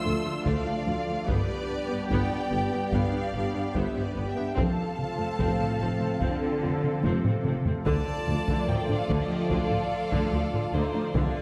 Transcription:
Already playing: analog synth pad F3 A3 D4 A4, french horn section A3 F4, viola section F4, violin section C6 E6
0.04 tuba D2, double bass section D2, cello section D2, viola section A3, synth arpeggio sound D4
0.25 cello section D2, synth arpeggio sound A3, viola section A3
0.45 tuba D2, double bass section D2, cello section D2, synth arpeggio sound D3, viola section A3, violin section D5 F5, taiko
0.67 cello section D2, synth arpeggio sound A3, viola section A3
0.86 tuba D2, double bass section D2, cello section D2, synth arpeggio sound F3, viola section A3
1.07 cello section D2, synth arpeggio sound F3, viola section A3
1.27 tuba G1, double bass section G1, cello section G2, synth arpeggio sound G3, analog synth pad G3 B3 D4 G4, viola section B3 G4, french horn section B3 G4, violin section B4 D5, taiko
1.89 cello section G2, synth arpeggio sound B3, viola section B3
2.09 tuba G1, double bass section G1, cello section G2, synth arpeggio sound G3, viola section B3, violin section D5 G5, taiko
2.30 cello section G2, viola section B3, synth arpeggio sound D4
2.51 tuba G1, double bass section G1, cello section G2, synth arpeggio sound B3, viola section B3
2.72 cello section G2, synth arpeggio sound B3, viola section B3
2.92 tuba G1, double bass section G1, cello section G2, synth arpeggio sound G3, viola section B3, violin section D5 F5, taiko
3.13 cello section G2, viola section B3, synth arpeggio sound D4
3.34 tuba G1, double bass section G1, cello section G2, viola section B3, synth arpeggio sound G4
3.54 cello section G2, viola section B3, synth arpeggio sound D4
3.75 tuba G1, double bass section G1, cello section G2, synth arpeggio sound G3, viola section B3, violin section C5 E5, taiko
3.95 cello section G2, viola section B3, synth arpeggio sound D4
4.03 violin section B4 D5
4.15 tuba G1, double bass section G1, cello section G2, viola section B3, synth arpeggio sound B3
4.31 violin section E5 G5
4.36 cello section G2, synth arpeggio sound B3, viola section B3
4.56 tuba F1, double bass section F1, cello section F2, synth arpeggio sound F3, analog synth pad F3 C4 F4 A4, viola section C4 A4, french horn section C4 F4, violin section F5 A5, taiko
4.99 taiko mid
5.18 cello section F2, synth arpeggio sound A3, viola section C4
5.39 tuba F1, double bass section F1, cello section A2, synth arpeggio sound F3, viola section C4, taiko
5.59 synth arpeggio sound C4, viola section C4, taiko mid
5.80 tuba F1, double bass section F1, synth arpeggio sound A3, viola section C4
6.00 synth arpeggio sound A3, viola section C4, taiko mid
6.21 tuba F1, double bass section F1, cello section D3, synth arpeggio sound F3, viola section C4, taiko
6.42 synth arpeggio sound C4, viola section C4
6.63 double bass section F1, tuba F1, viola section C4, synth arpeggio sound F4
6.83 viola section C4, synth arpeggio sound C4, taiko mid
7.04 tuba F1, double bass section F1, cello section C3, synth arpeggio sound F3, viola section C4, taiko high
7.24 synth arpeggio sound C4, viola section C4, taiko low-mid
7.45 double bass section F1, tuba F1, synth arpeggio sound A3, viola section C4, taiko mid
7.65 synth arpeggio sound A3, viola section C4, taiko low
7.86 tuba D2, double bass section D2, cello section D2, synth arpeggio sound D3, viola section D3 D5, analog synth pad F3 F4 A4 D5, french horn section A3 F4, violin section F4 A4 D5, violin A5, taiko
8.27 tuba D2, double bass section D2, cello section D2, viola section D3, synth arpeggio sound F3
8.48 cello section D2, viola section D3, synth arpeggio sound D3, taiko
8.67 double bass section D2, tuba D2, cello section D2, synth arpeggio sound F3, viola section F3, violin section A#4, violin G5, taiko low-mid
8.89 cello section D2, viola section D3, synth arpeggio sound D4, taiko low-mid
8.96 violin section A4, violin F5
9.09 tuba D2, double bass section D2, cello section D2, synth arpeggio sound D3, viola section D3, taiko
9.23 violin section G4, violin D#5
9.30 cello section D2, synth arpeggio sound F3, viola section F3
9.50 tuba D2, double bass section D2, cello section D2, synth arpeggio sound D3, viola section D3, violin section A4, violin F5, taiko
9.71 cello section D2, viola section F3, synth arpeggio sound A3, taiko low-mid
10.12 cello section D2, synth arpeggio sound D3, viola section D3, taiko
10.32 double bass section D2, tuba D2, cello section D2, viola section F3, synth arpeggio sound A3
10.53 cello section D2, viola section D3, synth arpeggio sound F3, taiko low-mid
10.73 tuba D2, double bass section D2, cello section D2, synth arpeggio sound D3, viola section D3, violin section D#4, violin C5
10.94 cello section D2, viola section F3, synth arpeggio sound D4
11.14 tuba D2, cello section D2, double bass section D2, synth arpeggio sound D3, viola section D3, analog synth pad D3 F3 F4 A4, french horn section A3 F4, violin section F4 A4, violin D5, taiko

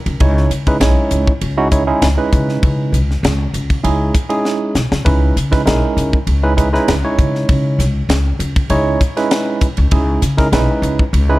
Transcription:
0.06 upright bass C#2, ride
0.20 upright bass C#2, tine electric piano G#3 C#4 D#4 E4 C#5, kick, ride
0.37 snare
0.50 upright bass C#3, hi-hat pedal, ride
0.67 tine electric piano G#3 C#4 D#4 E4 B4, kick, ride
0.80 upright bass B1, tine electric piano G#3 C#4 D#4 E4 C#5, snare, ride
1.11 upright bass C#2, hi-hat pedal, ride
1.27 kick
1.41 upright bass C#2, ride
1.57 tine electric piano G#3 C#4 D#4 E4 F#4
1.72 tine electric piano G#3 C#4 D#4 E4 C#5, kick, hi-hat pedal, ride
1.87 tine electric piano G#3 C#4 D#4 E4 G#4
2.02 upright bass C#2, snare, ride
2.17 tine electric piano G#3 C#4 D#4 E4 B4
2.32 upright bass C#3, kick, hi-hat pedal, ride
2.49 snare
2.63 upright bass C#3, kick, ride
2.92 upright bass C#2, hi-hat pedal, ride
3.11 snare
3.23 upright bass C#2, snare, ride
3.54 upright bass C#2, hi-hat pedal, ride
3.70 kick, ride
3.83 upright bass C#2, tine electric piano G#3 C#4 D#4 E4 G#4, ride
4.15 kick, hi-hat pedal, ride
4.29 tine electric piano G#3 C#4 D#4 E4 G#4, ride
4.45 snare
4.75 upright bass B1, snare, hi-hat pedal
4.92 upright bass C#2, snare
5.05 upright bass C#2, tine electric piano G#3 C#4 D#4 E4 B4, kick, ride
5.36 upright bass C#3, hi-hat pedal, ride
5.51 tine electric piano G#3 C#4 D#4 E4 B4, kick, snare, ride
5.65 upright bass B1, tine electric piano G#3 C#4 D#4 E4 A#4, snare, ride
5.97 upright bass C#2, hi-hat pedal, ride
6.13 kick
6.27 upright bass C#2, ride
6.43 tine electric piano G#3 C#4 D#4 E4 B4
6.57 tine electric piano G#3 C#4 D#4 E4 B4, kick, hi-hat pedal, ride
6.73 tine electric piano G#3 C#4 D#4 E4 B4, snare
6.88 upright bass C#2, snare, ride
7.04 tine electric piano G#3 C#4 D#4 E4 C#5
7.19 upright bass C#3, kick, hi-hat pedal, ride
7.35 snare
7.49 upright bass C#3, kick, ride
7.79 upright bass C#2, snare, hi-hat pedal, ride
8.09 upright bass C#2, snare, ride
8.39 upright bass C#2, hi-hat pedal, ride
8.56 kick, ride
8.70 upright bass C#2, tine electric piano G#3 C#4 D#4 E4 C#5, ride
9.01 kick, hi-hat pedal, ride
9.17 tine electric piano G#3 C#4 D#4 E4 B4, snare, ride
9.31 snare, ride
9.61 kick, hi-hat pedal, ride
9.77 upright bass C#2, ride
9.91 upright bass C#2, tine electric piano G#3 C#4 D#4 E4 G#4, kick, ride
10.22 upright bass C#3, snare, hi-hat pedal, ride
10.37 tine electric piano G#3 C#4 D#4 E4 A#4, kick, snare, ride
10.52 upright bass B1, tine electric piano G#3 C#4 D#4 E4 B4, snare, ride
10.82 upright bass C#2, hi-hat pedal, ride
10.99 kick
11.13 upright bass C#2, ride
11.29 tine electric piano G#3 C#4 D#4 E4 B4

